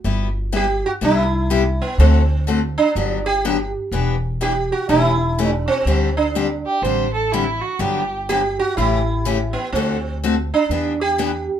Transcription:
0.04 G1 G3 B3 E4 G4
0.52 G3 B3 E4 G4
0.86 F#4
1.01 C2 C3 G3 B3 E4 G4
1.50 C3 G3 B3 E4 G4
1.82 B3
1.98 D2 D3 A3 C4 F#4 A4
2.47 D3 A3 C4 F#4 A4
2.78 D4
2.95 G1 D3 F#3 B3 D4 G4
3.26 G4
3.45 D3 F#3 B3 D4 G4
3.92 E1 E3 B3 D4 G4
4.41 E3 B3 D4 G4
4.72 F#4
4.89 E1 E3 A3 C#4 E4 G4
5.38 E3 A3 C#4 G4
5.50 D4
5.68 C4
5.86 D2 D3 G3 C4 D4 G4
6.17 D4
6.35 D3 G3 C4 D4 G4
6.66 G4
6.82 A1 D3 G3 C4 D4 G4 C5
7.14 A4
7.32 D3 G3 C4 D4 E4 G4
7.61 F#4
7.79 G1 D3 F#3 B3 D4 G4
8.29 D3 F#3 B3 D4 G4
8.59 F#4
8.77 A1 C#3 E3 A3 C#4 E4 G4
9.25 C#3 E3 A3 C#4 G4
9.53 B3
9.72 D2 D3 A3 C4 A4
9.77 F#4
10.24 D3 A3 C4 F#4 A4
10.54 D4
10.69 E2 E3 B3 D4 G4
11.01 G4
11.18 E3 B3 D4 G4

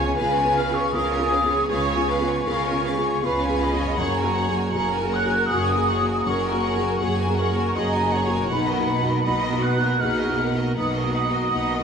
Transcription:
Already playing: C#2 C#3 B3 F4 G#4 C#5 G#5
0.00 C#5
0.17 C#2 C#3 B3 F4 G#4 B4 F5
0.36 F4 C#5 G#5
0.44 B3 F4 G#4
0.55 G#4 B4 F5 F6
0.69 B3 F4 G#4
0.73 F4 C#5 C#6
0.78 G#5
0.92 C#2 C#3 B3 F4 G#4 A#4 B4 F5 D#6
1.11 F4 C#5 G#5
1.19 B3 F4 G#4
1.31 G#4 B4 F5
1.43 B3 F4 G#4
1.49 F4 C#5
1.54 G#5
1.68 C#2 C#3 G#4 B4 C#5 C#6
1.72 F5
1.87 F4 C#5 G#5
1.95 B3 F4 G#4
2.07 G#4 B4 F5
2.21 B3 F4 G#4
2.26 F4 C#5 G#5
2.45 C#2 C#3 B3 F4 G#4 A#4 B4 F5
2.65 F4 C#5 G#5
2.71 B3 F4 G#4
2.84 G#4 B4 F5 C#6
2.96 B3 F4 G#4
3.03 F4 C#5 G#5
3.22 C#2 C#3 B3 F4 G#4 B4 F5 B5
3.41 F4 C#5 G#5
3.47 B3 F4 G#4
3.60 G#4 B4 D#5 F5
3.72 B3 F4 G#4
3.78 F#2 F4 C#5 G#5
3.85 A#3
3.90 C#4
3.94 F#2 G#4 F#5
3.98 F#1 F#2 C#5 A#5
4.16 F#4 A#4 G#5
4.23 A#3 F#4 G#4
4.35 G#4 C#5 F#5
4.48 A#3 F#4 G#4
4.55 F#4 A#4 G#5
4.71 F#1 F#2 A#3 G#4 C#5 F#5
4.75 F#4 G#4 A#4
4.91 F#4 A#4 G#5
5.01 A#3 F#4 G#4
5.09 F#5
5.13 G#4 C#5 F#6
5.25 A#3 F#4 G#4
5.29 F#4 A#4 G#5
5.48 F#1 F#2 A#3 F#4 G#4 C#5 F#5 D#6
5.68 F#4 A#4 G#5
5.75 A#3 G#4
5.86 G#4 C#5 F#5
6.01 A#3 F#4 G#4
6.06 F#4 A#4 G#5
6.25 F#1 F#2 G#4 A#4 C#5 F#5 C#6
6.44 F#4 A#4 G#5
6.51 A#3 F#4 G#4
6.62 G#4 C#5 F#5
6.76 A#3 F#4 G#4
6.80 F#4 A#4 G#5
6.99 F#1 F#2 A#3 F#4 G#4 C#5 F#5
7.17 F#4 A#4 G#5
7.26 A#3 F#4 G#4
7.37 G#4 A#4 C#5 F#5 C#6
7.51 A#3 F#4 G#4 G#5
7.57 F#4 A#4
7.73 F#1 F#2 G#4 C#5 D#5 F#5 A#5
7.77 A#3 F#4 G#4
7.92 F#4 A#4 G#5
8.03 A#3 G#4
8.11 G#4 C#5 F#5
8.27 A#3 F#4 G#4 G#5
8.32 B2 F#4 A#4
8.38 A#3
8.42 D#4
8.47 B3 F#4 F#5
8.51 B1 B2 D#4 B4 B5
8.68 F#4 A#4 D#5
8.77 A#3 D#4 F#4
8.86 F#5
8.90 D#4 B4
9.02 A#3 D#4 F#4
9.06 F#4 A#4 D#5
9.23 B1 B2 D#4 B4 D#5 F#5
9.27 A#3 D#4 F#4
9.42 F#4 A#4 D#5
9.53 A#3 D#4 F#4
9.60 B3 D#4 B4 F#5 F#6
9.77 A#3 D#4 F#4 D#5
9.82 F#4 A#4
9.99 B1 B2 A#3 D#4 G#4 B4 F#5 F6
10.04 F#4
10.18 F#4 A#4 D#5
10.28 A#3 D#4 F#4
10.36 D#4 A#4 B4 F#5
10.53 A#3 D#4 F#4 D#5
10.58 F#4 A#4
10.76 B1 B2 B3 D#4 B4 F#5 D#6
10.95 F#4 A#4 D#5
11.03 A#3 D#4 F#4
11.14 D#4 B4 D#5 F#5
11.29 A#3 D#4 F#4 D#5
11.33 F#4 A#4
11.51 B1 B2 A#3 D#4 B4 F#5
11.55 F#4
11.71 F#4 A#4 D#5
11.78 A#3 D#4 F#4

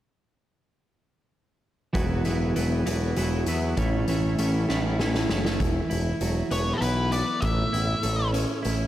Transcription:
1.93 E1 E3 F#3 B3 E4, kick, closed hi-hat
2.25 E1 E3 F#3 B3 E4, closed hi-hat
2.55 E1 E3 F#3 B3 E4, closed hi-hat
2.86 E1 E3 F#3 B3 E4, closed hi-hat
3.16 E1 E3 F#3 B3 E4, closed hi-hat
3.46 E2 E3 F#3 B3 E4, closed hi-hat
3.77 A1 E3 A3 C#4 E4, kick, closed hi-hat
4.08 A1 E3 A3 C#4 E4, closed hi-hat
4.39 A1 E3 A3 C#4 E4, closed hi-hat
4.69 A1 E3 A3 C#4 E4, snare
4.99 A1 E3 A3 C#4 E4, snare
5.14 snare
5.29 F#1 E3 A3 C#4 E4, snare
5.45 snare
5.60 E1 E3, kick, closed hi-hat
5.90 E1 E4, closed hi-hat
6.21 E1 F#3, closed hi-hat
6.51 E1 B3 C#5, closed hi-hat
6.74 A4
6.81 B1 E4 B4, closed hi-hat
7.12 B3 D5, closed hi-hat
7.41 A1 A2 E5, kick, closed hi-hat
7.73 A1 E4, closed hi-hat
8.03 A1 A3, closed hi-hat
8.33 C#4, closed hi-hat
8.63 A1 E4, closed hi-hat

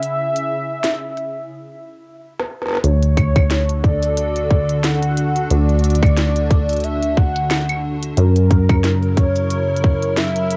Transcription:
Already playing: C#3 C#4 E4 G#4 E5
0.03 closed hi-hat
0.36 closed hi-hat
0.84 snare, closed hi-hat
1.17 closed hi-hat
2.39 snare
2.62 snare
2.66 snare
2.68 snare
2.71 snare
2.73 snare
2.75 snare
2.77 snare
2.84 D2 D3 C#5, closed hi-hat
3.03 closed hi-hat
3.07 D4
3.17 kick, closed hi-hat, claves
3.36 A4, kick, closed hi-hat, claves
3.51 F#4, snare, closed hi-hat
3.69 closed hi-hat
3.84 D5, kick, closed hi-hat
4.03 closed hi-hat, shaker
4.17 closed hi-hat
4.36 closed hi-hat
4.51 kick
4.69 closed hi-hat
4.84 F#5, snare, closed hi-hat
5.03 closed hi-hat
5.17 closed hi-hat
5.36 closed hi-hat
5.50 D2 D5, closed hi-hat
5.69 closed hi-hat
5.79 closed hi-hat
5.84 closed hi-hat
5.90 closed hi-hat
5.95 closed hi-hat
6.03 kick, closed hi-hat, claves
6.06 closed hi-hat
6.17 snare, closed hi-hat
6.36 closed hi-hat
6.51 kick, closed hi-hat
6.69 closed hi-hat, shaker
6.73 closed hi-hat
6.77 closed hi-hat
6.80 closed hi-hat
6.84 E5, closed hi-hat
7.03 closed hi-hat
7.17 F#5, kick
7.36 closed hi-hat
7.51 snare, closed hi-hat, claves
7.69 closed hi-hat, claves
8.03 closed hi-hat
8.17 F#2 F#3 A#4, closed hi-hat
8.35 C#3, closed hi-hat
8.51 kick, closed hi-hat
8.61 A#4
8.69 kick, closed hi-hat, claves
8.84 snare, closed hi-hat
8.94 E4
9.03 closed hi-hat
9.17 C#5, kick, closed hi-hat
9.36 shaker
9.50 closed hi-hat
9.77 closed hi-hat
9.84 kick
10.02 closed hi-hat
10.17 E5, snare, closed hi-hat
10.36 closed hi-hat
10.51 closed hi-hat

